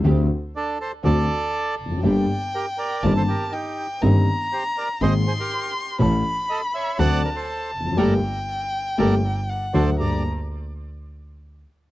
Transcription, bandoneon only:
\new Staff \with { instrumentName = "Bandoneon" } { \time 4/4 \key g \minor \tempo 4 = 121 r4 <d' a'>8 <a' c''>8 <a' d''>4. r8 | r4 <g' bes'>8 <bes' d''>8. <a' c''>16 <g' bes'>8 <ees' g'>8. r16 | r4 <g' c''>8 <bes' d''>8 <c'' ees''>8 <aes' c''>16 <g' bes'>8. r8 | r4 <a' ees''>8 <cis'' e''>8 <d'' fis''>8 <bes' d''>16 <a' c''>8. r8 |
<a' bes' d''>8 r4. <a' bes' d''>8 r4 <a' c'' d''>8 | d''8 r2. r8 | }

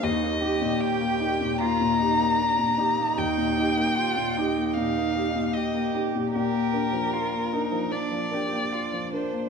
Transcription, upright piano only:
\new Staff \with { instrumentName = "Upright piano" } { \time 4/4 \key ees \major \tempo 4 = 76 ees,16 bes16 <ees' g'>16 bes,8 bes16 <ees' g'>16 bes,16 bes16 bes,16 <ees' g'>16 bes8 bes,16 <ees' g'>16 bes16 | ees,16 bes,16 <ees' g'>16 bes8 bes,16 <ees' g'>16 bes16 bes,16 bes16 <ees' g'>16 bes,8 bes16 <ees' g'>16 bes,16 | bes,16 bes16 <d' bes'>16 f8 bes16 <d' bes'>16 f16 bes16 f16 <d' bes'>16 bes8 f16 <d' bes'>16 bes16 | }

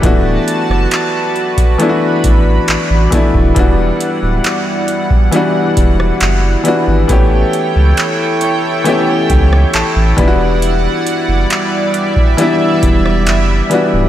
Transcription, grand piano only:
<<
  \new Staff \with { instrumentName = "Grand piano" } { \time 4/4 \key e \dorian \tempo 4 = 68 <e' g'>16 r2. r8. | r1 | r4. cis''8 e''8 g''8 a''8 b''8 | r1 | }
  \new Staff \with { instrumentName = "Grand piano" } { \time 4/4 \key e \dorian <e a b d' fis'>2 <e a b d' e' fis'>4. <e a b d' e'>8 | <e g b d' fis'>2 <e g b d' fis'>4. <e g b d' fis'>8 | <e a b cis' g'>2 <e a b cis' g'>4. <e g b d' e' fis'>8~ | <e g b d' e' fis'>4. r8 <e g b d' e'>4. <e g b d' fis'>8 | }
>>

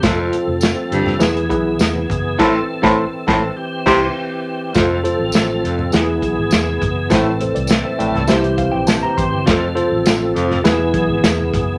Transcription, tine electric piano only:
<<
  \new Staff \with { instrumentName = "Tine electric piano" } { \time 4/4 \key f \major \tempo 4 = 102 << { r1 | r1 | r1 | r8 <a' c''>16 d''8 <c'' e''>16 <d'' e'' g''>16 a''16 e''8 f''16 g''16 a''16 bes''16 c'''8 |
r1 | } \\ { <f' a' c''>4~ <f' a' c''>16 r8. <e' gis' b'>8 <e' gis' b'>4 r8 | <a, e' a' c''>8 r16 <a, e' a' c''>8 r4 r16 <e' g' c'' g''>8 r4 | <f' a' c''>16 r16 <f' a' c''>4~ <f' a' c''>16 r16 <e' gis' b'>4. r8 | <e' a' c''>16 r4. r16 <e' g' c''>4. r8 |
<f' a' c''>16 r16 <f' a' c''>4~ <f' a' c''>16 r16 <e' gis' b'>4. r8 | } >> }
  \new Staff \with { instrumentName = "Tine electric piano" } { \clef bass \time 4/4 \key f \major r2 e4. r8 | r1 | r2 e4. r8 | a,4. r8 c4. r8 |
r2 e4. r8 | }
>>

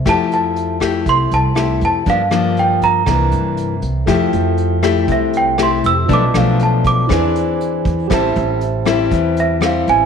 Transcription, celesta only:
\new Staff \with { instrumentName = "Celesta" } { \time 4/4 \key f \major \tempo 4 = 119 a''8 a''4. c'''8 a''4 a''8 | f''4 g''8 bes''2 r8 | r2 e''8 g''8 c'''8 e'''8 | d'''8 f''8 a''8 d'''4. r4 |
r2 r8 e''8 f''8 aes''8 | }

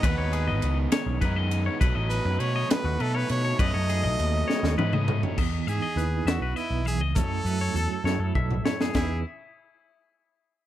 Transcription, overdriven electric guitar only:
\new Staff \with { instrumentName = "Overdriven electric guitar" } { \clef bass \time 6/8 \key e \major \tempo 4. = 67 <gis, dis gis b dis'>2 <gis, dis gis b dis'>4 | <b, fis a dis'>2 <b, fis a dis'>4 | <b, fis a dis'>2 <b, fis a dis'>4 | r2. |
r2. | r2. | }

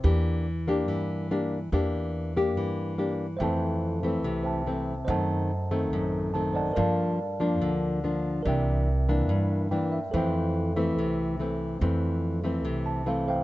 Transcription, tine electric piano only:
\new Staff \with { instrumentName = "Tine electric piano" } { \time 4/4 \key f \major \tempo 4 = 143 << { r1 | r1 | r1 | r2. a''8 d''8 |
r1 | r2. g''8 e''8 | r1 | r2 r8 a''8 f''8 f''8 | } \\ { r1 | r1 | <c'' e'' g'' a''>2~ <c'' e'' g'' a''>8 <c'' e'' g'' a''>4. | <c'' ees'' fis'' a''>2.~ <c'' ees'' fis'' a''>8 <c'' ees'' fis'' a''>8 |
<bes' d'' f'' a''>1 | <bes' d'' e'' g''>1 | <a' c'' e'' g''>1~ | <a' c'' e'' g''>2.~ <a' c'' e'' g''>8 <a' c'' e'' g''>8 | } >> }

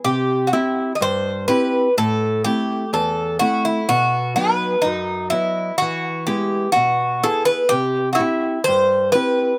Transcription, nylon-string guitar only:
\new Staff \with { instrumentName = "Nylon-string guitar" } { \time 4/4 \tempo 4 = 125 c4 <c' e' g'>4 g,4 <c' e' g'>4 | a,4 <a c' e'>4 e,4 <a c' e'>4 | b,4 <fis b dis'>4 fis,4 <fis b dis''>4 | e4 <gis b e'>4 b,4 <b e' gis'>4 |
c4 <c' e' g'>4 g,4 <c' e' g'>4 | }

